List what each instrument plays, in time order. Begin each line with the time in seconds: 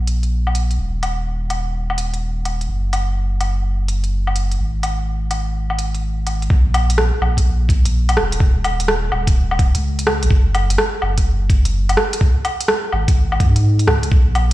Already playing: sub bass A#1
0.07 closed hi-hat
0.23 closed hi-hat
0.47 low woodblock
0.55 closed hi-hat
0.71 closed hi-hat
0.79 sub bass D#1
1.03 closed hi-hat, low woodblock
1.50 closed hi-hat, low woodblock
1.90 low woodblock
1.98 closed hi-hat
2.14 closed hi-hat
2.45 closed hi-hat, low woodblock
2.61 closed hi-hat
2.69 sub bass F#1
2.93 closed hi-hat, low woodblock
3.41 closed hi-hat, low woodblock
3.88 closed hi-hat
4.04 closed hi-hat
4.27 low woodblock
4.36 closed hi-hat
4.52 closed hi-hat
4.60 sub bass G#1
4.83 closed hi-hat, low woodblock
5.31 closed hi-hat, low woodblock
5.70 low woodblock
5.79 closed hi-hat
5.95 closed hi-hat
6.27 closed hi-hat, low woodblock
6.42 closed hi-hat
6.50 sub bass A#1, kick
6.74 closed hi-hat, low woodblock
6.90 closed hi-hat
6.98 cross-stick
7.21 sub bass A#1, low woodblock
7.37 kick, closed hi-hat
7.69 kick, closed hi-hat
7.85 closed hi-hat
8.09 closed hi-hat, low woodblock
8.17 sub bass D#1, cross-stick
8.32 closed hi-hat
8.40 kick
8.64 closed hi-hat, low woodblock
8.80 closed hi-hat
8.88 cross-stick
9.12 sub bass D#1, low woodblock
9.27 kick, closed hi-hat
9.51 low woodblock
9.59 kick, closed hi-hat
9.75 sub bass C#2, closed hi-hat
9.99 closed hi-hat
10.07 cross-stick, low woodblock
10.23 sub bass F#1, closed hi-hat
10.31 kick
10.55 closed hi-hat, low woodblock
10.70 closed hi-hat
10.78 cross-stick
11.02 sub bass F#1, low woodblock
11.18 kick, closed hi-hat
11.50 kick, closed hi-hat
11.65 closed hi-hat
11.89 closed hi-hat, low woodblock
11.97 cross-stick
12.13 closed hi-hat
12.21 kick
12.45 closed hi-hat, low woodblock
12.61 closed hi-hat
12.68 cross-stick
12.93 sub bass G#1, low woodblock
13.08 kick, closed hi-hat
13.32 low woodblock
13.40 sub bass G#2, kick, closed hi-hat
13.56 closed hi-hat
13.79 closed hi-hat
13.88 sub bass C#2, cross-stick, low woodblock
14.03 closed hi-hat
14.12 sub bass A#1, kick
14.35 closed hi-hat, low woodblock